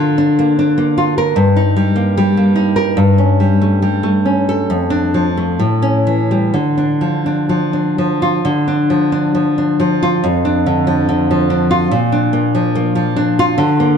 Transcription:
nylon-string guitar
Already playing: D3
0.00 F4
0.18 D4
0.39 A#3
0.59 D4
0.78 A#3
0.98 F4
1.18 A#4
1.36 G2
1.56 D#4
1.76 G3
1.96 A#3
2.17 G3
2.37 A#3
2.56 D#4
2.76 A#4
2.97 G2
3.18 C#4
3.40 G3
3.61 A3
3.82 G3
4.03 A3
4.25 C#4
4.49 A4
4.70 F2
4.90 D4
5.14 F3
5.37 A3
5.59 A2
5.82 C#4
6.07 E3
6.31 G3
6.54 D3
6.78 D4
7.01 F3
7.26 D4
7.49 F3
7.73 D4
7.98 F3
8.22 F4
8.45 D3
8.68 D4
8.90 F3
9.12 D4
9.35 F3
9.58 D4
9.80 F3
10.03 F4
10.24 F2
10.45 D4
10.66 D3
10.87 F3
11.09 D3
11.31 F3
11.50 D4
11.71 F4
11.91 A#2
12.12 D4
12.33 A#3
12.55 F3
12.75 A#3
12.95 F3
13.16 D4
13.39 F4
13.58 D3
13.80 A#3

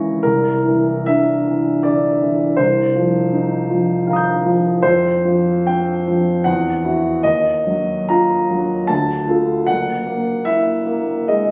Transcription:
grand piano
Already playing: C#2 D#3 E3 C#4 E5 G#5 C#6 A#6
0.23 C2 A#4
0.65 E3
1.06 D4 E5
1.47 E3
1.83 D3 D5
2.21 E3
2.57 C2 C5
2.96 F3
3.33 D#4
3.70 F3
4.07 D#3 F5 A#5
4.13 D#6 G6
4.46 F3
4.82 F2 C5
5.25 F3
5.67 C4 G5
6.08 F3
6.44 E2 F#5
6.84 E4 F#4
7.23 D#2 D#5
7.67 F#3
8.09 F4 A#5
8.49 F#3
8.87 D2 A5
9.28 F4 A4
9.67 F#1 F#5
10.07 A#3
10.45 E4 E5
10.86 A#3
11.28 G#3 D#5

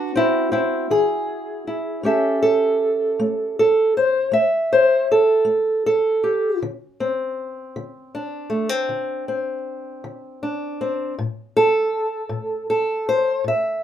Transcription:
steel-string acoustic guitar
Already playing: D4 E4 F#4 B4
0.15 C4 E4
0.52 C4 E4
0.91 E3 G#4
1.67 E4
2.03 A3 C#4 G4 A4 E5
2.42 A4
3.19 A3
3.59 A4
3.97 C5
4.32 A3 E5
4.73 C5
5.12 A4
5.45 A3
5.86 A4
6.24 G4
6.62 D3
7.00 C4
7.76 D3
8.15 D4
8.50 A3
8.69 C4
8.89 D3
9.28 C4
10.04 D3
10.43 D4
10.81 C4
11.19 A2
11.57 A4
12.29 A2
12.70 A4
13.09 C5
13.44 A2 E5

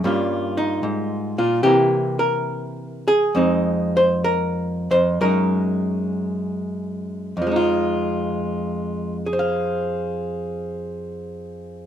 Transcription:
hollow-body jazz guitar
0.04 G2 G3 A#3 C#4 F4
0.57 D#4
0.83 G#2
1.38 A#2 F4
1.63 C3 E3 A#3 E4 G4
2.19 A#4
3.08 G#4
3.35 F2 G#3 C4 D#4
3.97 C5
4.24 A#4
4.91 F2 C5
5.21 F#2 F#3 G#3 D#4 A#4
7.37 F2
7.42 F3
7.47 G#3
7.51 D#4
7.56 F4
9.26 G#4
9.33 C5
9.39 F5

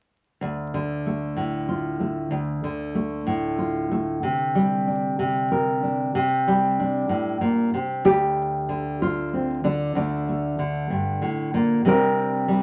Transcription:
nylon-string guitar
0.41 D2
0.74 D3
1.06 A3
1.36 A2
1.69 F4
2.00 A3
2.31 D2
2.64 D3
2.95 A3
3.27 A2
3.59 F4
3.91 A3
4.23 C3
4.55 G3
4.87 D4
5.19 C3
5.52 A#4
5.83 D4
6.15 C3
6.48 G3
6.80 D4
7.09 A2
7.41 A#2
7.74 C3
8.05 D2 G4
8.69 D3
9.02 F4
9.33 C4
9.64 D3 D4
9.95 D2 D4
10.28 A3
10.59 D3
10.90 G2
11.22 A2
11.54 A#2
11.85 C3 G3 C4 D4 A#4
12.48 G3

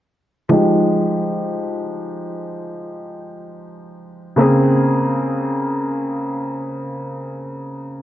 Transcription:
felt piano
0.49 F3 G#3 D#4
0.53 G4
4.36 C#3 A#3 C4
4.40 G#4

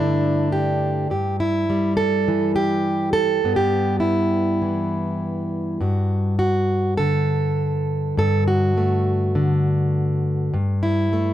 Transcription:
steel-string acoustic guitar
Already playing: G2 D3 A3 D4 E4
0.52 G4
1.10 G2 G4
1.40 E4
1.70 G3
1.97 A4
2.28 E3
2.56 G4
3.13 A4
3.44 G2 B3
3.56 G4
4.00 E4
4.62 E3
5.81 G2 F#4
6.39 F#4
6.97 D3 A4
8.17 G2 A4
8.48 F#4
8.77 A3
9.35 D3
10.54 G2
10.83 E4
11.13 A3

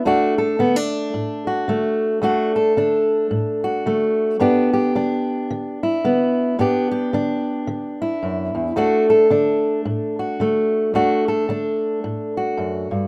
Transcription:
steel-string acoustic guitar
0.05 D2 A3 D4 F#4
0.38 A4
0.59 D3 B3
0.76 D4
1.14 A2
1.47 F#4
1.68 D3 A3
2.22 D2 A3 D4 F#4
2.56 A4
2.77 D3 D4
3.31 A2
3.64 F#4
3.86 D3 A3
4.40 G2 B3 D4 G4
4.74 G4
4.95 D3 D4
5.50 D3
5.83 E4
6.04 D3 B3
6.59 G2 B3 D4 G4
6.91 G4
7.13 D3 D4
7.67 D3
8.02 E4
8.23 F#2
8.55 E2
8.76 D2 A3 D4 F#4
9.10 A4
9.30 D3 D4
9.85 A2
10.19 F#4
10.40 D3 A3
10.94 D2 A3 D4 F#4
11.28 A4
11.49 D3 D4
12.04 A2
12.37 F#4
12.57 F#2
12.91 G2

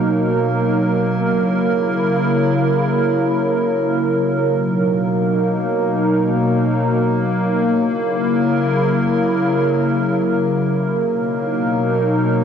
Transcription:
analog synth pad
Already playing: B2 F#3 A#3 D#4 A#4
1.28 C#3 E4
4.54 B2 A#3 D#4
7.81 C#3 F#3 E4 A#4
11.07 B2 F#3 A#3 D#4 A#4

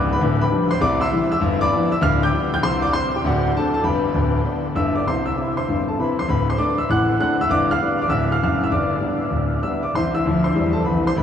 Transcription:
grand piano
Already playing: C#1 C#2
0.13 B4 B5
0.21 D1 D2
0.42 B4 G5 B5
0.51 F3 G3 D4
0.71 C5 C6
0.81 C2 C3 D5 D6
1.01 E5 C6 E6
1.12 E3 G3 E4
1.32 E5 E6
1.41 G1 G2
1.61 D5 B5 D6
1.73 F3 B3 E4
1.92 E5 E6
2.01 D1 D2 F5 F6
2.23 G5 D6 G6
2.33 G3 B3 F4
2.54 G5 G6
2.63 C2 C3 C5 C6
2.82 D5 D6
2.93 G3 C4 E4 C5 C6
3.16 G4 G5
3.24 D1 D2 F#4 D5 F#5
3.56 D3 C4 D4 A4 A5
3.74 A4 A5
3.83 G1 G2 B4 G5 B5
4.14 D1 D2
4.45 D3 B3 D4
4.75 G1 G2 E5 E6
4.95 D5 D6
5.06 C2 C3 C5 C6
5.25 E5 E6
5.37 C3 C4 E4
5.57 C5 C6
5.68 G1 G2
5.88 A4 A5
5.98 C3 C4 E4 B4 B5
6.19 C5 C6
6.28 D1 D2 B4 B5
6.50 C5 C6
6.58 A3 C4 D4 D5 D6
6.78 E5 E6
6.90 A1 A2 F#5 F#6
7.20 A3 C4 D4 F#5 F#6
7.41 E5 E6
7.49 G1 G2 D5 D6
7.71 F5 F6
7.81 G3 B3 D4
8.02 D5 D6
8.08 D1 D2 E5 E6
8.32 F5 F6
8.42 F#1 F#2 F5 F6
8.64 E5 E6
8.71 G1 G2 D5 D6
9.00 G3 B3 D4
9.30 D1 D2
9.62 G3 B3 D4 E5 E6
9.83 D5 D6
9.95 C2 E3 C5 C6
10.15 E5 E6
10.25 D2 F3
10.44 C5 C6
10.54 E2 G3
10.73 A4 A5
10.84 C2 E3 B4 B5
11.07 C5 C6
11.16 D1 D2 B4 B5

